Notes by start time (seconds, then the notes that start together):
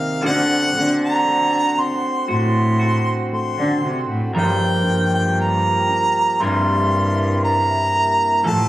Already playing: C3 D#3 A#3 D4 D#4 G4 A#4 F5
0.22 D3 A3 C4 F#4 F#5
0.75 D3 A3 C4 F#4
1.04 A#5
1.26 A3
1.77 C4 C6
2.28 A2 F#4 C6
2.79 F#4
3.32 A3 C6
3.58 D3
3.83 C3 F#4
4.09 A2
4.33 G2 F3 A#3 G4 A#4
4.38 G5
4.86 G2 A#3 D4 G4
5.14 G5
5.37 A#3 A#5
5.88 D4
6.40 G2 C3 G3 A#3 E4 A#4 C6
7.43 A#3 A#5
7.94 G4
8.44 A2 D3 F3 A3 F4 A4 A5